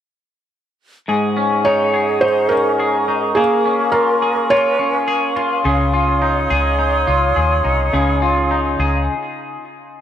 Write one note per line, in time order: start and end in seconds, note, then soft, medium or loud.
1.08 3.37 G#2 medium
1.08 3.34 G#4 medium
1.08 1.93 G#4 medium
1.08 3.35 D#5 medium
1.08 3.34 F#5 medium
1.08 5.62 C#6 medium
1.37 2.51 C#4 soft
1.65 2.21 D#4 medium
1.65 2.24 C#5 medium
1.94 2.79 G#4 soft
2.21 3.07 D#4 soft
2.21 2.51 C5 medium
2.49 3.65 C#4 soft
2.49 3.38 A#4 medium
2.80 3.37 G#4 medium
3.08 3.42 D#4 soft
3.35 5.65 A#3 medium
3.35 3.89 G#4 medium
3.35 4.22 G#4 soft
3.35 5.63 A#4 medium
3.35 9.04 F5 medium
3.35 5.63 G#5 medium
3.65 4.79 C#4 soft
3.92 4.50 F4 soft
3.92 4.52 A#4 medium
4.22 5.07 G#4 soft
4.50 5.36 F4 medium
4.50 5.32 C#5 medium
4.79 5.93 C#4 soft
5.08 5.65 G#4 medium
5.36 5.93 F4 soft
5.65 6.47 C#2 medium
5.65 7.92 C#3 medium
5.65 6.50 G#4 medium
5.65 9.05 C#5 medium
5.65 9.05 C6 medium
5.65 9.04 D#6 medium
5.93 7.06 F4 medium
6.22 6.78 D#4 medium
6.50 7.05 C#2 medium
6.50 7.36 G#4 medium
6.79 7.64 D#4 soft
7.07 7.35 C#2 medium
7.07 8.21 F4 soft
7.36 7.64 D#2 medium
7.36 7.93 G#4 medium
7.64 7.92 C2 medium
7.64 8.50 D#4 soft
7.93 8.75 C#2 medium
7.93 9.13 C#3 medium
7.93 8.79 G#4 medium
8.22 9.14 F4 medium
8.51 9.64 D#4 medium
8.79 9.07 C#2 medium
8.79 9.64 G#4 medium